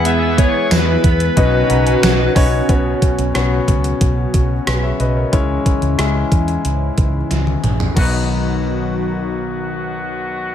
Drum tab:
CC |----------------|----------------|----------------|x---------------|
HH |x-x-x-xxx-xxx-o-|x-xxx-xxx-x-x-x-|x-xxx-xxx-x-x-x-|----------------|
TB |----x-------x---|----------------|----------------|----------------|
SD |----o-------o---|----r-------r---|----r-------o---|----------------|
T1 |----------------|----------------|-------------o--|----------------|
T2 |----------------|----------------|--------------o-|----------------|
FT |----------------|----------------|---------------o|----------------|
BD |--o---o-o-----o-|o-o---o-o-o-----|o-o---o---o-----|o---------------|